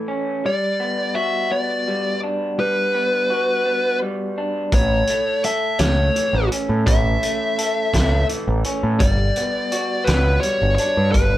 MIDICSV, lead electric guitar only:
0, 0, Header, 1, 2, 480
1, 0, Start_track
1, 0, Tempo, 713436
1, 299, Time_signature, 6, 3, 24, 8
1, 7654, End_track
2, 0, Start_track
2, 0, Title_t, "Lead electric guitar"
2, 0, Program_c, 0, 29
2, 310, Note_on_c, 0, 74, 82
2, 758, Note_off_c, 0, 74, 0
2, 776, Note_on_c, 0, 76, 86
2, 1001, Note_off_c, 0, 76, 0
2, 1020, Note_on_c, 0, 74, 72
2, 1473, Note_off_c, 0, 74, 0
2, 1747, Note_on_c, 0, 71, 86
2, 2677, Note_off_c, 0, 71, 0
2, 3191, Note_on_c, 0, 73, 79
2, 3639, Note_off_c, 0, 73, 0
2, 3665, Note_on_c, 0, 76, 97
2, 3900, Note_off_c, 0, 76, 0
2, 3903, Note_on_c, 0, 73, 72
2, 4355, Note_off_c, 0, 73, 0
2, 4622, Note_on_c, 0, 76, 88
2, 5554, Note_off_c, 0, 76, 0
2, 6052, Note_on_c, 0, 74, 90
2, 6757, Note_on_c, 0, 71, 77
2, 6798, Note_off_c, 0, 74, 0
2, 6998, Note_off_c, 0, 71, 0
2, 7001, Note_on_c, 0, 73, 81
2, 7225, Note_off_c, 0, 73, 0
2, 7233, Note_on_c, 0, 73, 76
2, 7478, Note_off_c, 0, 73, 0
2, 7480, Note_on_c, 0, 71, 81
2, 7654, Note_off_c, 0, 71, 0
2, 7654, End_track
0, 0, End_of_file